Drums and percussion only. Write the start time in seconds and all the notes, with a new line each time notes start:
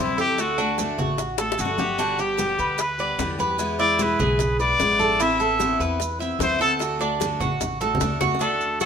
0.18 high bongo, high conga, maracas
0.38 high bongo, high conga, maracas
0.59 high conga, maracas
0.78 high bongo, high conga, maracas
0.98 high bongo, high conga, low conga, maracas
1.18 high bongo, high conga, maracas
1.38 high bongo, high conga, maracas
1.52 high bongo
1.59 high conga, maracas
1.65 low bongo
1.78 low bongo, high conga, maracas
1.98 high bongo, high conga, maracas
2.19 high bongo, high conga, maracas
2.38 high bongo, high conga, maracas
2.58 high bongo, maracas
2.78 high bongo, high conga, maracas
2.99 high conga, maracas
3.19 high bongo, low bongo, high conga, maracas
3.39 high bongo, high conga, maracas
3.59 high bongo, high conga, maracas
3.79 high conga, maracas
3.99 high bongo, high conga, maracas
4.19 high bongo, high conga, low conga, maracas
4.39 high bongo, high conga, low conga, maracas
4.59 high bongo, high conga, maracas
4.80 high bongo, low bongo, high conga, maracas
5.00 high bongo, high conga, maracas
5.20 high bongo, high conga, maracas
5.40 high bongo, high conga, maracas
5.60 high bongo, high conga, maracas
5.80 high bongo, maracas
6.00 high bongo, high conga, maracas
6.21 high conga, maracas
6.40 high bongo, low bongo, high conga, maracas
6.60 high bongo, maracas
6.80 high bongo, high conga, maracas
7.01 high conga, maracas
7.21 high bongo, high conga, maracas
7.40 high bongo, high conga, low conga, maracas
7.61 high bongo, high conga, low conga, maracas
7.81 high bongo, high conga, maracas
7.95 low conga
8.01 high bongo, low bongo, maracas
8.21 high bongo, low conga, maracas
8.35 low bongo
8.41 high bongo, high conga, maracas
8.61 high conga, maracas
8.80 high bongo, high conga, maracas